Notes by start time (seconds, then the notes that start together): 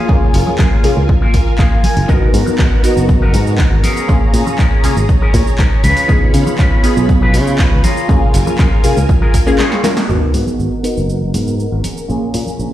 Already playing: A#3 F4 G#4 A#4 G#5
0.08 F#2 A#3 C#4 F4 G#4, kick, tambourine
0.22 tambourine, low conga
0.34 F#1, open hi-hat, tambourine
0.46 muted clean electric guitar stroke, tambourine, high conga
0.58 F#2 A#3 F4 G#4, kick, clap, tambourine
0.72 tambourine
0.84 A#3 C#4 F4 G#4, muted fingered electric bass stroke, open hi-hat, tambourine, low conga
0.97 C#2, tambourine
1.09 muted clean electric guitar stroke, kick, tambourine
1.21 A#3 F4 A#4, tambourine, high conga
1.34 kick, open hi-hat, tambourine
1.46 muted clean electric guitar stroke, tambourine
1.58 A#3 F4 G#4 F5, kick, clap
1.72 tambourine
1.84 G#5, muted fingered electric bass stroke, open hi-hat, tambourine, high conga
1.96 F#1, open hi-hat, tambourine
2.08 G#1 B3 D#4 F#4 A#4 A#5, kick, tambourine, shaker
2.21 tambourine, low conga
2.34 G#2, open hi-hat, tambourine, shaker
2.46 muted clean electric guitar stroke, muted fingered electric bass stroke, tambourine, high conga, shaker
2.58 G#1 B3 F#4 A#4, kick, clap, tambourine, shaker
2.72 tambourine
2.83 B3 D#4 F#4 A#4, open hi-hat, tambourine, shaker
2.97 F#1, tambourine, shaker
3.09 muted clean electric guitar stroke, kick, tambourine, shaker
3.21 B3 F#4 A#4, tambourine, high conga
3.34 G#2, open hi-hat, tambourine, shaker
3.46 muted clean electric guitar stroke, tambourine, shaker
3.58 B3 F#4 A#4, kick, clap, shaker
3.72 G#1, tambourine
3.83 C#4 G#4 A#4 C#5, open hi-hat, tambourine, high conga, shaker
3.97 tambourine, shaker
4.08 A#1 A#3 C#4 F4 G#4, kick, shaker
4.22 tambourine
4.34 A#2, open hi-hat, tambourine, shaker
4.46 muted clean electric guitar stroke, muted fingered electric bass stroke, tambourine, high conga, shaker
4.58 A#1 C#4 G#4 A#4, kick, clap, tambourine, shaker
4.72 tambourine
4.84 A#3 C#4 F4 G#4, muted fingered electric bass stroke, open hi-hat, tambourine, low conga, shaker
4.96 G#1, tambourine, shaker
5.09 muted clean electric guitar stroke, kick, tambourine, shaker
5.21 C#4 G#4 A#4, tambourine, high conga
5.34 A#2, kick, open hi-hat, tambourine, shaker
5.47 muted clean electric guitar stroke, muted fingered electric bass stroke, tambourine, shaker
5.58 G#2 C#4 G#4 A#4, kick, clap, tambourine, shaker
5.71 tambourine
5.83 C#2 C#4 F4 B4 B5, open hi-hat, tambourine, high conga, shaker
5.97 open hi-hat, tambourine, shaker
6.08 C#2 B3 D#4 F4 G#4, kick, tambourine, shaker
6.22 tambourine, low conga
6.34 C#3, open hi-hat, tambourine, shaker
6.46 muted clean electric guitar stroke, muted fingered electric bass stroke, tambourine, high conga, shaker
6.58 C#2 C#4 F4 B4, kick, clap, tambourine, shaker
6.72 tambourine
6.83 B3 D#4 F4 G#4, open hi-hat, tambourine, shaker
6.97 B1, tambourine, shaker
7.08 muted clean electric guitar stroke, kick, tambourine, shaker
7.22 C#4 F4 B4, tambourine, high conga
7.34 C#3, open hi-hat, tambourine, shaker
7.47 muted clean electric guitar stroke, tambourine, shaker
7.58 C#4 F4 B4, kick, clap, shaker
7.72 C#2, tambourine
7.84 F4 G#4 A#4 G#5, open hi-hat, tambourine, high conga, shaker
7.96 tambourine, shaker
8.08 F#2 A#3 C#4 F4 G#4, kick, tambourine, shaker
8.22 tambourine, low conga
8.34 F#1, open hi-hat, tambourine, shaker
8.46 muted clean electric guitar stroke, muted fingered electric bass stroke, tambourine, high conga, shaker
8.58 F#2 F4 G#4 A#4, kick, clap, tambourine, shaker
8.72 tambourine
8.84 A#3 C#4 F4 G#4, muted fingered electric bass stroke, open hi-hat, tambourine, low conga, shaker
8.97 C#2, tambourine, shaker
9.09 muted clean electric guitar stroke, kick, tambourine, shaker
9.21 F4 G#4 A#4, tambourine, high conga
9.33 kick, open hi-hat, tambourine, shaker
9.46 A#3 C#4 F4 G#4, muted clean electric guitar stroke, tambourine, shaker
9.58 F4 G#4 C#5, snare, clap, tambourine, shaker
9.72 snare, tambourine
9.83 A#3 C#4 F4 A#4, snare, open hi-hat, tambourine, high conga, shaker
9.96 snare, open hi-hat, tambourine, shaker
10.08 G#1 B3 D#4 F#4 A#4 F#5, sub drop, shaker
10.21 muted clean electric guitar stroke, tambourine, low conga
10.33 G#2 B3 F#4 G#4, open hi-hat, shaker
10.47 muted fingered electric bass stroke, tambourine, high conga, shaker
10.59 G#1, tambourine, shaker
10.72 tambourine
10.83 B3 D#4 F#4 A#4, open hi-hat, shaker
10.97 F#1, shaker
11.09 muted clean electric guitar stroke, shaker
11.21 tambourine, high conga
11.34 G#2 B3 F#4 A#4, open hi-hat, tambourine, shaker
11.47 shaker
11.60 shaker
11.72 G#1 B3 F#4 A#4
11.84 C#4 G#4 A#4 G#5 C#6, open hi-hat, tambourine, high conga, shaker
11.97 tambourine, shaker
12.08 A#1 A#3 C#4 F4 G#4, shaker
12.22 muted clean electric guitar stroke, tambourine
12.34 A#2 C#4 G#4 A#4, open hi-hat, shaker
12.46 muted fingered electric bass stroke, tambourine, high conga, shaker
12.59 A#1, tambourine, shaker